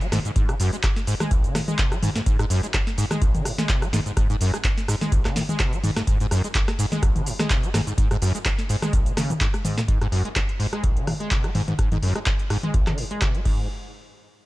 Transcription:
0.01 G#3, closed hi-hat, shaker
0.12 G#2, cross-stick, snare, open hi-hat, mid tom, shaker
0.25 G#2, closed hi-hat, shaker
0.36 G#2, kick, closed hi-hat, shaker
0.49 D#3, cross-stick, closed hi-hat, shaker
0.60 F#2, open hi-hat, shaker
0.73 G#3, closed hi-hat, shaker
0.83 G#1, kick, cross-stick, clap, closed hi-hat, shaker
0.96 snare, closed hi-hat, shaker
1.07 G#2, open hi-hat, shaker
1.20 G#3, cross-stick, snare, closed hi-hat, mid tom, shaker
1.31 G#1, kick, closed hi-hat, shaker
1.44 D#3, closed hi-hat, shaker
1.55 G#2, cross-stick, snare, open hi-hat, mid tom, shaker
1.68 G#3, closed hi-hat, mid tom, shaker
1.79 B2, kick, clap, closed hi-hat, shaker
1.92 G#3, cross-stick, closed hi-hat, shaker
2.03 G#2, open hi-hat, mid tom, shaker
2.16 G#2, snare, closed hi-hat, shaker
2.26 G#2, kick, closed hi-hat, shaker
2.39 G#2, cross-stick, closed hi-hat, shaker
2.50 F#2, open hi-hat, shaker
2.63 G#3, closed hi-hat, shaker
2.74 G#1, kick, cross-stick, clap, closed hi-hat, shaker
2.87 snare, closed hi-hat, shaker
2.98 G#2, open hi-hat, shaker
3.11 G#3, cross-stick, snare, closed hi-hat, mid tom, shaker
3.22 G#1, kick, closed hi-hat, shaker
3.35 D#3, closed hi-hat, mid tom, shaker
3.45 G#2, cross-stick, open hi-hat, shaker
3.58 G#3, snare, closed hi-hat, mid tom, shaker
3.69 B2, kick, clap, closed hi-hat, shaker
3.82 G#3, cross-stick, closed hi-hat, shaker
3.93 G#2, snare, open hi-hat, mid tom, shaker
4.06 G#2, closed hi-hat, shaker
4.17 G#2, kick, cross-stick, closed hi-hat, shaker
4.30 G#2, closed hi-hat, shaker
4.41 F#2, open hi-hat, shaker
4.54 G#3, cross-stick, closed hi-hat, shaker
4.64 G#1, kick, clap, closed hi-hat, shaker
4.78 snare, closed hi-hat, shaker
4.88 G#2, cross-stick, open hi-hat, shaker
5.01 G#3, snare, closed hi-hat, mid tom, shaker
5.12 G#1, kick, closed hi-hat, shaker
5.25 D#3, cross-stick, snare, clap, closed hi-hat, shaker
5.36 G#2, snare, open hi-hat, mid tom, shaker
5.49 G#3, closed hi-hat, mid tom, shaker
5.60 B2, kick, cross-stick, clap, closed hi-hat, shaker
5.73 G#3, closed hi-hat, shaker
5.84 G#2, open hi-hat, mid tom, shaker
5.97 G#2, cross-stick, snare, closed hi-hat, shaker
6.07 G#2, kick, closed hi-hat, shaker
6.20 G#2, closed hi-hat, shaker
6.31 F#2, cross-stick, open hi-hat, shaker
6.44 G#3, closed hi-hat, shaker
6.55 G#1, kick, clap, closed hi-hat, shaker
6.68 cross-stick, snare, closed hi-hat, shaker
6.79 G#2, open hi-hat, shaker
6.92 G#3, snare, closed hi-hat, mid tom, shaker
7.03 G#1, kick, cross-stick, closed hi-hat, shaker
7.16 D#3, closed hi-hat, mid tom, shaker
7.26 G#2, open hi-hat, shaker
7.39 G#3, cross-stick, snare, closed hi-hat, mid tom, shaker
7.50 B2, kick, clap, closed hi-hat, shaker
7.63 G#3, closed hi-hat, shaker
7.74 G#2, cross-stick, snare, open hi-hat, mid tom, shaker
7.87 G#2, closed hi-hat, shaker
7.98 G#2, kick, closed hi-hat, shaker
8.11 G#2, cross-stick, closed hi-hat, shaker
8.22 F#2, open hi-hat, shaker
8.35 G#3, closed hi-hat, shaker
8.45 G#1, kick, cross-stick, clap, closed hi-hat, shaker
8.59 snare, closed hi-hat, shaker
8.69 G#2, open hi-hat, shaker
8.82 G#3, cross-stick, snare, closed hi-hat, mid tom, shaker
8.93 G#1, kick, closed hi-hat, shaker
9.06 D#3, closed hi-hat, shaker
9.17 C#3, cross-stick, snare, open hi-hat, mid tom, shaker
9.30 G#2, closed hi-hat, mid tom, shaker
9.41 G#2, kick, clap, closed hi-hat, shaker
9.54 cross-stick, closed hi-hat, high tom, shaker
9.64 G#2, open hi-hat, mid tom, shaker
9.77 C#3, snare, closed hi-hat, mid tom, shaker
9.88 G#2, kick, closed hi-hat
10.01 G#2, cross-stick, closed hi-hat
10.12 F#2, open hi-hat
10.25 G#3, closed hi-hat
10.36 G#1, kick, cross-stick, clap, closed hi-hat
10.49 closed hi-hat
10.60 G#2, open hi-hat
10.73 G#3, cross-stick, closed hi-hat
10.83 G#1, kick, closed hi-hat
10.96 D#3, closed hi-hat
11.07 G#2, cross-stick, open hi-hat, mid tom
11.20 G#3, closed hi-hat
11.31 B2, kick, clap, closed hi-hat
11.44 G#3, cross-stick, closed hi-hat
11.55 G#2, open hi-hat, mid tom
11.68 G#2, closed hi-hat, mid tom
11.78 G#2, kick, cross-stick, closed hi-hat
11.91 G#2, closed hi-hat, mid tom
12.02 F#2, open hi-hat
12.15 G#3, cross-stick, closed hi-hat
12.26 G#1, kick, clap, closed hi-hat
12.39 closed hi-hat
12.50 G#2, cross-stick, open hi-hat
12.63 G#3, closed hi-hat, mid tom
12.74 G#1, kick, closed hi-hat
12.87 D#3, cross-stick, clap, closed hi-hat, mid tom
12.98 G#2, open hi-hat
13.11 G#3, closed hi-hat
13.21 B2, kick, cross-stick, clap, closed hi-hat
13.34 G#3, closed hi-hat
13.45 G#2, kick, crash

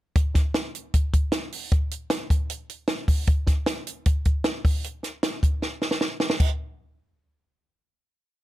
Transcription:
0.16 kick, closed hi-hat
0.34 kick, snare, closed hi-hat
0.54 snare, closed hi-hat
0.75 closed hi-hat
0.94 kick, closed hi-hat
1.14 kick, closed hi-hat
1.32 snare, closed hi-hat
1.52 open hi-hat
1.72 kick, closed hi-hat
1.91 closed hi-hat
2.10 snare, closed hi-hat
2.30 kick, closed hi-hat
2.50 closed hi-hat
2.70 closed hi-hat
2.88 snare, closed hi-hat
3.08 kick, open hi-hat
3.27 kick, closed hi-hat
3.47 kick, snare, closed hi-hat
3.66 snare, closed hi-hat
3.87 closed hi-hat
4.06 kick, closed hi-hat
4.25 kick, closed hi-hat
4.44 snare, closed hi-hat
4.65 kick, open hi-hat
4.84 closed hi-hat
5.03 snare, closed hi-hat
5.23 snare, closed hi-hat
5.43 kick, closed hi-hat
5.62 snare
5.82 snare
5.91 snare
6.01 snare
6.20 snare
6.30 snare
6.40 kick, crash

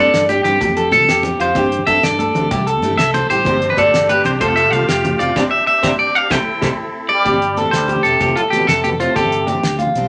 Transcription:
Already playing: A4 D5
0.00 G2
0.05 low conga
0.14 G2, snare, closed hi-hat
0.21 low conga
0.29 G4, closed hi-hat, high conga
0.44 G2 G3 C4 D4 G4, closed hi-hat, low conga
0.53 low conga
0.61 F2 A3 C4 G4, muted clean electric guitar stroke, muted steel-string acoustic guitar stroke, kick, closed hi-hat, high conga
0.69 low conga
0.76 A4, closed hi-hat, low conga
0.92 C2 F3 A3 C4 A4, closed hi-hat, high conga
0.96 G4, low conga
1.08 F2 G4, snare, closed hi-hat
1.23 closed hi-hat, high conga, low conga
1.31 low conga
1.39 F2 F3 A3 F4 G4 C5, closed hi-hat, low conga
1.55 G2 C4 D4 G4, kick, closed hi-hat, high conga, low conga
1.71 closed hi-hat, low conga
1.79 low conga
1.87 G2 C4 D4 G4 A4 E5, kick, closed hi-hat, high conga
1.95 low conga
2.03 G2 D5, snare, closed hi-hat
2.10 low conga
2.19 A4, closed hi-hat, high conga
2.34 D2 C4 D4 G4, closed hi-hat, low conga
2.44 low conga
2.51 C2 G3 A3 E4 G4, muted steel-string acoustic guitar stroke, kick, closed hi-hat, high conga
2.59 low conga
2.67 A4, closed hi-hat, low conga
2.82 G2 G3 A3 E4 G4, closed hi-hat, high conga
2.91 low conga
2.98 C2 A4 E5, snare, closed hi-hat
3.14 C5, closed hi-hat, high conga, low conga
3.22 low conga
3.30 A1 G3 A3 E4 G4 C5, closed hi-hat, low conga
3.45 G1 C4 D4 G4 C5, kick, closed hi-hat, high conga, low conga
3.61 closed hi-hat, low conga
3.69 B4, low conga
3.77 G1 C4 D4 G4 A4 D5, kick, closed hi-hat, high conga
3.86 low conga
3.93 G1, snare, closed hi-hat
4.01 low conga
4.09 G4 B4, closed hi-hat, high conga
4.24 C2 C4 D4 G4 C5, closed hi-hat, low conga
4.34 low conga
4.41 F1 F3 A3 C4 F4 A4 C5, muted steel-string acoustic guitar stroke, kick, closed hi-hat, high conga
4.56 A4 E5, closed hi-hat, low conga
4.71 C2 F3 A3 C4 G4 F5, closed hi-hat, high conga
4.81 low conga
4.88 F1 G4, snare, closed hi-hat
5.05 closed hi-hat, high conga, low conga
5.13 low conga
5.19 F1 F3 A3 C4 F4 G4 D5, closed hi-hat, low conga
5.36 G1 C4 D4 G4 C5, kick, snare, high conga
5.51 E5
5.67 E5
5.83 G1 C4 D4 G4 C5, kick, snare, high conga
5.99 D5
6.15 F5
6.30 C2 A3 C4 E4 G4 A4 C5 G5, kick, snare, high conga
6.61 C2 A3 C4 E4 G4 A4 C5, kick, snare, high conga
7.09 G3 D5
7.25 G1 C4 D4 G4, kick, closed hi-hat, high conga
7.34 low conga
7.42 closed hi-hat
7.57 C4 D4 G4 A4, closed hi-hat, high conga
7.65 low conga
7.71 D2 G3 C5, snare, closed hi-hat
7.88 G4, closed hi-hat, high conga
7.96 low conga
8.03 E1 C3 C4 D4 G4 A4, closed hi-hat, low conga
8.20 F1 F3 A3 C4 G4, kick, closed hi-hat, high conga
8.29 low conga
8.36 A2 F4 A4, closed hi-hat
8.50 B2 F3 A3 C4 G4, snare, closed hi-hat, high conga, low conga
8.61 low conga
8.67 F1 C3 A4, kick, snare, closed hi-hat
8.84 B2 G4, closed hi-hat, high conga, low conga
8.93 low conga
9.00 A2 F3 A3 C4 F4 G4 C5, closed hi-hat
9.16 G1 C3 G3 C4 D4 G4 A4, kick, closed hi-hat, high conga
9.24 low conga
9.32 closed hi-hat
9.47 G3 C4 D4 G4, closed hi-hat, high conga
9.55 low conga
9.63 D2, snare, closed hi-hat, low conga
9.79 F4, closed hi-hat, high conga
9.87 low conga
9.95 B1 G3 C4 D4 G4, closed hi-hat, low conga

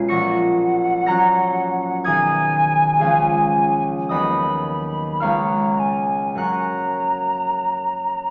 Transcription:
Already playing: B1 G#3 B3 C#4 F4 B5 G#6 B6
0.08 A#1 F#5 C#6 A#6 C#7
1.06 F#3 C#4 F#4 A#5 F#6 A#6
2.04 B1 D#3 D#4 G#4 G#5 D#6 G#6
2.99 C#2 F3 C#4 G#4 F5 G#5
4.09 D#2 F#3 B3 B4 D#5 B5 D#6
4.67 B5
5.20 C#2 G#3 C#4 B4 F5 A#5 C#6 F6
5.79 G#5
6.35 F#2 F#3 C#4 A#4 F#6
6.39 F#5 A#5 C#6

